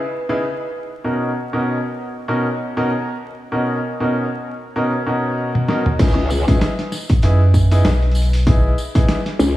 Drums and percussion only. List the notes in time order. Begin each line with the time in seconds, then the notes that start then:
5.55 high tom
5.69 snare
5.86 mid tom
5.99 kick, closed hi-hat, tambourine, crash
6.30 tambourine
6.48 kick, closed hi-hat, tambourine
6.61 snare, closed hi-hat, tambourine
6.79 snare, closed hi-hat
6.92 snare, tambourine
7.09 kick, closed hi-hat, tambourine
7.22 closed hi-hat, tambourine
7.54 kick, snare, tambourine
7.71 closed hi-hat, tambourine
7.85 snare, closed hi-hat, tambourine
8.02 closed hi-hat
8.11 closed hi-hat, tambourine
8.22 closed hi-hat
8.33 closed hi-hat, tambourine
8.35 closed hi-hat
8.37 closed hi-hat
8.39 closed hi-hat
8.41 closed hi-hat
8.43 closed hi-hat
8.45 closed hi-hat, tambourine
8.47 kick, closed hi-hat
8.78 tambourine
8.95 kick, closed hi-hat, tambourine
9.09 snare, closed hi-hat, tambourine
9.26 snare, closed hi-hat
9.40 tambourine